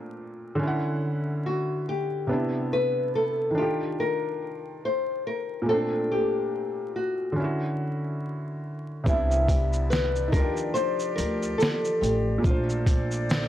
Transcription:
Already playing: felt piano A#2 A3 C4 D4, nylon-string guitar F4
0.55 felt piano D3 C#4
0.63 felt piano E4
0.67 felt piano F#5
1.46 nylon-string guitar F#4
1.89 nylon-string guitar G4
2.27 felt piano C3 B3 D4
2.33 felt piano E4
2.73 nylon-string guitar B4
3.15 nylon-string guitar A4
3.50 felt piano D#3
3.54 felt piano D4, nylon-string guitar G4
3.59 felt piano F4 G4
4.00 nylon-string guitar A#4
4.85 nylon-string guitar C5
5.27 nylon-string guitar A#4
5.62 felt piano A#2
5.66 felt piano A3 C4, nylon-string guitar A4
5.74 felt piano D4
6.12 nylon-string guitar G4
6.96 nylon-string guitar F#4
7.32 felt piano D3 C#4
7.40 felt piano E4
7.44 felt piano F#4
9.04 upright bass C2, felt piano C3 B3, woodwind section C3 B3 E4 D5, nylon-string guitar E4, kick, shaker
9.08 felt piano D4 E4
9.31 shaker
9.49 nylon-string guitar G4, kick, closed hi-hat, shaker
9.73 shaker
9.90 nylon-string guitar B4, snare, shaker
10.16 shaker
10.28 felt piano D#4
10.32 upright bass D#2, woodwind section F3 F4 G4, felt piano D4, nylon-string guitar A#4, kick, closed hi-hat, shaker
10.36 felt piano F4 G4
10.57 shaker
10.74 nylon-string guitar C5, shaker
11.00 shaker
11.16 upright bass D2, nylon-string guitar A#4, closed hi-hat, shaker
11.43 shaker
11.58 nylon-string guitar A4, shaker
11.63 snare
11.85 shaker
12.01 upright bass A1, nylon-string guitar G4, closed hi-hat, shaker
12.38 felt piano A#2 A3
12.44 upright bass A#1, woodwind section A#2 A4 C5 D5, felt piano D4, nylon-string guitar F4, kick, shaker
12.50 felt piano C5
12.69 shaker
12.87 kick, closed hi-hat, shaker
13.11 shaker
13.30 snare, shaker

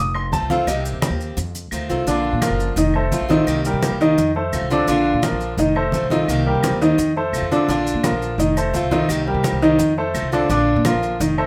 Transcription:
Already playing: upright bass F1, grand piano D#6
0.15 grand piano C6, high conga, claves
0.32 upright bass C2, steel-string acoustic guitar D#3 A3 C4 F4, grand piano A5, high conga, maracas
0.41 upright bass C2
0.50 steel-string acoustic guitar D#3 A3 C4 F4, grand piano F5, high conga, maracas
0.67 upright bass C2, steel-string acoustic guitar C3 D#3 A#3 C4 G4, grand piano D#5, high conga, claves, maracas
0.85 high conga, maracas
0.93 upright bass C3
1.02 steel-string acoustic guitar D#3 A#3 C4 G4, high conga, claves, maracas
1.10 upright bass D#2
1.20 maracas
1.37 upright bass F2, muted steel-string acoustic guitar stroke, high conga, maracas
1.55 high conga, maracas
1.71 upright bass D2, steel-string acoustic guitar D#3 A3 C4 F4, high conga, claves, maracas
1.89 upright bass C2, steel-string acoustic guitar D#3 A3 C4 F4, high conga, maracas
2.07 upright bass A#1, steel-string acoustic guitar D3 A#3 D4 F4, grand piano D3 D4 D5, high conga, maracas
2.25 high conga
2.33 upright bass A#2
2.42 steel-string acoustic guitar D3 A#3 D4 F4, grand piano F3 F4 A#4, high conga, claves, maracas
2.50 upright bass F#1
2.59 high conga, maracas
2.76 upright bass F1, grand piano D#3 D#4 D#5, muted steel-string acoustic guitar stroke, high conga, maracas
2.94 grand piano A3 A4 C5, high conga, claves
3.12 upright bass C2, steel-string acoustic guitar D#3 A3 C4 F4, high conga, maracas
3.20 upright bass A#1
3.29 steel-string acoustic guitar D#3 A3 C4 F4, grand piano D#3 D#4 D#5, high conga, maracas
3.46 upright bass C2, steel-string acoustic guitar C3 D#3 A#3 C4 G4, claves, maracas
3.65 grand piano G3 G4 A#4, high conga, maracas
3.73 upright bass C3
3.82 steel-string acoustic guitar D#3 A#3 C4 G4, high conga, claves, maracas
3.91 upright bass C2
4.01 grand piano D#3 D#4 D#5, maracas
4.18 upright bass F2, muted steel-string acoustic guitar stroke, high conga, maracas
4.35 grand piano A3 A4 C5, high conga
4.53 upright bass C2, steel-string acoustic guitar D#3 A3 C4 F4, high conga, claves, maracas
4.61 upright bass C2
4.70 grand piano D3 D4 D5, steel-string acoustic guitar D#3 A3 C4 F4, high conga, maracas
4.87 upright bass A#1, steel-string acoustic guitar D3 A#3 D4 F4, grand piano D3 D4 D5, high conga, maracas
5.06 high conga
5.14 upright bass A#2
5.23 steel-string acoustic guitar D3 A#3 D4 F4, grand piano F3 F4 A#4, high conga, claves, maracas
5.31 upright bass A#1
5.41 high conga, maracas
5.57 upright bass F1, grand piano D#3 D#4 D#5, muted steel-string acoustic guitar stroke, high conga, maracas
5.75 grand piano A3 A4 C5, high conga, claves
5.92 upright bass C2, steel-string acoustic guitar D#3 A3 C4 F4, high conga, maracas
6.02 upright bass C2
6.10 grand piano D#3 D#4 D#5, steel-string acoustic guitar D#3 A3 C4 F4, high conga, maracas
6.28 upright bass C2, steel-string acoustic guitar C3 D#3 A#3 C4 G4, high conga, claves, maracas
6.46 grand piano G3 G4 A#4, high conga
6.55 upright bass C3
6.63 steel-string acoustic guitar D#3 A#3 C4 G4, high conga, claves, maracas
6.71 upright bass D#2
6.81 grand piano D#3 D#4 D#5, maracas
6.98 upright bass F2, muted steel-string acoustic guitar stroke, high conga, maracas
7.16 grand piano A3 A4 C5, high conga
7.32 upright bass C2, steel-string acoustic guitar D#3 A3 C4 F4, high conga, claves, maracas
7.41 upright bass F2
7.51 grand piano D3 D4 D5, steel-string acoustic guitar D#3 A3 C4 F4, high conga, maracas
7.68 upright bass A#1, steel-string acoustic guitar D3 A#3 D4 F4, grand piano D3 D4 D5, high conga, maracas
7.87 high conga, maracas
7.94 upright bass A#2
8.03 steel-string acoustic guitar D3 A#3 D4 F4, grand piano F3 F4 A#4, high conga, claves, maracas
8.12 upright bass A#1
8.22 high conga, maracas
8.38 upright bass F1, grand piano D#3 D#4 D#5, muted steel-string acoustic guitar stroke, high conga, maracas
8.56 grand piano A3 A4 C5, high conga, claves, maracas
8.74 upright bass C2, steel-string acoustic guitar D#3 A3 C4 F4, high conga, maracas
8.82 upright bass C2
8.91 grand piano D#3 D#4 D#5, steel-string acoustic guitar D#3 A3 C4 F4, high conga, maracas
9.09 upright bass C2, steel-string acoustic guitar C3 D#3 A#3 C4 G4, high conga, claves, maracas
9.27 grand piano G3 G4 A#4, high conga
9.34 upright bass C3
9.43 steel-string acoustic guitar D#3 A#3 C4 G4, high conga, claves, maracas
9.53 upright bass C2
9.62 grand piano D#3 D#4 D#5, maracas
9.79 upright bass F2, muted steel-string acoustic guitar stroke, high conga, maracas
9.98 grand piano A3 A4 C5, high conga
10.14 upright bass C2, steel-string acoustic guitar D#3 A3 C4 F4, high conga, claves, maracas
10.22 upright bass C2
10.32 grand piano D3 D4 D5, steel-string acoustic guitar D#3 A3 C4 F4, high conga, maracas
10.49 upright bass A#1, steel-string acoustic guitar D3 A#3 D4 F4, grand piano D3 D4 D5, high conga, maracas
10.67 high conga
10.76 upright bass A#2
10.85 steel-string acoustic guitar D3 A#3 D4 F4, grand piano F3 F4 A#4, high conga, claves, maracas
10.93 upright bass A#1
11.03 high conga, maracas
11.20 upright bass F1, grand piano D#3 D#4 D#5, muted steel-string acoustic guitar stroke, high conga, maracas
11.38 grand piano A3 A4 C5, high conga, claves

